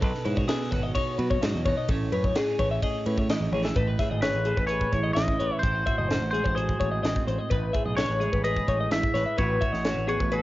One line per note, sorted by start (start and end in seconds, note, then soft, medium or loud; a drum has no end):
0.00 0.11 B1 loud
0.00 1.62 B2 medium
0.00 0.95 D#4 medium
0.00 0.25 A4 medium
0.00 0.49 B4 medium
0.00 kick loud
0.00 ride medium
0.15 snare soft
0.25 0.44 G#2 medium
0.25 0.36 E4 medium
0.25 0.37 B4 medium
0.25 ride medium
0.36 0.71 F#4 medium
0.36 0.48 C#5 medium
0.36 kick medium
0.48 1.63 B3 medium
0.48 0.71 G#4 medium
0.48 1.66 A4 soft
0.48 snare loud
0.48 ride medium
0.61 snare soft
0.71 0.91 G#1 medium
0.71 1.42 F#4 medium
0.71 0.83 B4 medium
0.71 kick medium
0.71 snare soft
0.71 ride medium
0.83 0.94 D#5 medium
0.95 1.63 D#4 medium
0.95 1.18 C#5 medium
0.95 kick medium
0.95 ride medium
1.18 1.37 B2 medium
1.18 1.63 F#3 medium
1.18 1.30 B4 medium
1.18 ride medium
1.30 1.42 C#5 medium
1.30 kick medium
1.42 1.52 G#2 medium
1.42 1.63 F#4 medium
1.42 1.65 D#5 medium
1.42 snare loud
1.42 ride medium
1.54 1.72 E2 medium
1.65 1.87 B2 medium
1.65 1.87 D#4 medium
1.65 1.77 C#5 medium
1.65 kick medium
1.65 ride medium
1.77 1.89 D#5 medium
1.88 2.07 A1 medium
1.88 3.75 A2 medium
1.88 3.06 C#4 medium
1.88 2.12 A4 medium
1.88 kick loud
1.88 ride medium
2.12 2.30 F#2 medium
2.12 2.24 B4 medium
2.12 2.59 C#5 medium
2.12 ride medium
2.24 2.35 C#5 medium
2.24 kick medium
2.35 2.59 G#4 medium
2.35 2.82 G#4 medium
2.35 snare loud
2.35 ride medium
2.48 snare soft
2.59 2.78 A1 medium
2.59 3.73 A3 medium
2.59 2.71 C#5 medium
2.59 3.74 C#5 medium
2.59 kick medium
2.59 ride medium
2.71 2.82 E5 medium
2.82 3.53 G#4 medium
2.82 3.06 D#5 medium
2.82 kick medium
2.82 ride medium
3.06 3.33 A2 medium
3.06 3.74 C#4 medium
3.06 3.18 B4 medium
3.06 ride medium
3.18 3.29 C#5 medium
3.18 kick medium
3.29 3.73 E3 medium
3.29 3.52 D#5 medium
3.29 snare loud
3.29 ride medium
3.40 3.50 A1 medium
3.52 3.70 A1 medium
3.52 3.74 G#4 medium
3.52 3.64 C#5 medium
3.52 high tom medium
3.64 3.76 E5 medium
3.64 snare medium
3.76 3.94 A1 medium
3.76 5.63 A2 medium
3.76 3.87 A4 medium
3.76 3.99 B4 medium
3.76 kick loud
3.76 closed hi-hat medium
3.87 5.40 B4 medium
3.99 4.23 G#4 medium
3.99 4.11 E5 medium
3.99 kick medium
3.99 snare soft
3.99 closed hi-hat medium
4.11 4.29 G#1 medium
4.11 4.22 D#5 medium
4.22 4.70 G#4 medium
4.22 4.67 B4 medium
4.22 4.46 C#5 medium
4.22 snare loud
4.22 closed hi-hat medium
4.34 4.53 A1 medium
4.45 5.61 A3 medium
4.45 4.57 G#4 medium
4.45 closed hi-hat medium
4.57 4.85 A1 medium
4.57 4.67 B4 medium
4.57 kick medium
4.67 5.63 G#4 medium
4.67 4.92 B4 medium
4.67 5.13 C#5 medium
4.67 closed hi-hat medium
4.81 kick medium
4.92 5.11 A1 medium
4.92 5.61 E3 medium
4.92 5.03 C#5 medium
4.92 kick medium
4.92 closed hi-hat medium
5.03 5.14 D#5 medium
5.13 5.26 A1 medium
5.13 5.61 C#4 medium
5.13 5.59 D#5 medium
5.13 5.39 E5 medium
5.13 snare medium
5.13 closed hi-hat medium
5.28 kick medium
5.39 5.50 A1 medium
5.39 5.61 B4 medium
5.39 5.51 C#5 medium
5.39 closed hi-hat medium
5.51 5.63 E5 medium
5.59 6.30 C5 medium
5.59 5.86 C5 medium
5.63 5.82 A1 loud
5.63 6.79 A2 medium
5.63 5.75 E4 medium
5.63 kick loud
5.63 closed hi-hat medium
5.75 5.86 F#4 soft
5.86 6.10 F#4 medium
5.86 5.98 E5 medium
5.86 kick medium
5.86 closed hi-hat medium
5.98 6.17 F#1 medium
5.98 6.08 D#5 medium
6.08 6.56 F#4 medium
6.08 6.33 C5 medium
6.08 snare loud
6.08 closed hi-hat medium
6.22 6.41 A1 medium
6.31 7.54 G#3 medium
6.31 6.44 G#4 medium
6.31 6.54 C5 medium
6.31 closed hi-hat medium
6.44 6.74 A1 medium
6.44 6.55 C5 medium
6.44 kick medium
6.55 7.48 F#4 medium
6.55 7.23 G#4 medium
6.55 6.80 C5 medium
6.55 closed hi-hat medium
6.69 kick medium
6.80 6.99 A1 medium
6.80 7.50 A2 medium
6.80 6.91 C#5 medium
6.80 kick medium
6.80 closed hi-hat medium
6.92 7.02 D#5 medium
7.03 7.14 A1 medium
7.03 7.52 C4 soft
7.03 7.27 D#5 medium
7.03 snare loud
7.03 closed hi-hat medium
7.16 kick medium
7.27 7.37 A1 medium
7.27 7.39 C5 medium
7.27 7.49 C5 medium
7.27 closed hi-hat medium
7.39 7.51 D#5 medium
7.50 7.70 A1 loud
7.50 8.66 A2 medium
7.50 7.74 B4 medium
7.50 7.97 B4 medium
7.50 kick loud
7.50 closed hi-hat medium
7.73 8.45 G#4 medium
7.73 7.85 E5 medium
7.73 kick medium
7.73 closed hi-hat medium
7.86 8.05 B1 medium
7.86 7.97 D#5 medium
7.97 8.08 A4 medium
7.97 8.44 C#5 medium
7.97 8.21 C#5 medium
7.97 snare loud
7.97 closed hi-hat medium
8.08 8.28 A1 medium
8.08 9.15 B4 medium
8.20 9.42 G#3 medium
8.20 8.32 G#4 medium
8.20 closed hi-hat medium
8.32 8.61 A1 medium
8.32 8.43 B4 medium
8.32 kick medium
8.44 9.39 G#4 medium
8.44 8.68 B4 medium
8.44 8.92 D#5 medium
8.44 closed hi-hat medium
8.56 kick medium
8.67 8.87 A1 medium
8.67 9.37 A2 medium
8.67 8.80 C#5 medium
8.67 kick medium
8.67 closed hi-hat medium
8.80 8.91 D#5 medium
8.91 9.01 A1 medium
8.91 9.37 E4 medium
8.91 9.13 E5 medium
8.91 9.38 E5 medium
8.91 snare loud
8.91 closed hi-hat medium
9.03 kick medium
9.14 9.24 A1 medium
9.14 9.42 B4 medium
9.14 9.26 C#5 medium
9.14 snare soft
9.14 closed hi-hat medium
9.26 9.38 E5 medium
9.38 9.57 A1 loud
9.38 10.42 A2 medium
9.38 9.62 F#4 medium
9.38 9.62 B4 medium
9.38 10.08 C#5 medium
9.38 kick loud
9.38 closed hi-hat medium
9.61 9.85 F#4 medium
9.61 9.72 E5 medium
9.61 kick medium
9.61 closed hi-hat medium
9.72 9.92 A1 medium
9.72 9.84 D#5 medium
9.72 snare soft
9.84 10.33 F#4 medium
9.84 10.09 C#5 medium
9.84 snare loud
9.84 closed hi-hat medium
9.97 10.16 A1 medium
10.08 10.42 B3 medium
10.08 10.20 G#4 medium
10.08 10.33 C#5 medium
10.08 closed hi-hat medium
10.20 10.42 A1 medium
10.20 10.31 B4 medium
10.20 kick medium
10.32 10.42 F#4 medium
10.32 10.42 A4 medium
10.32 10.42 B4 medium
10.32 closed hi-hat medium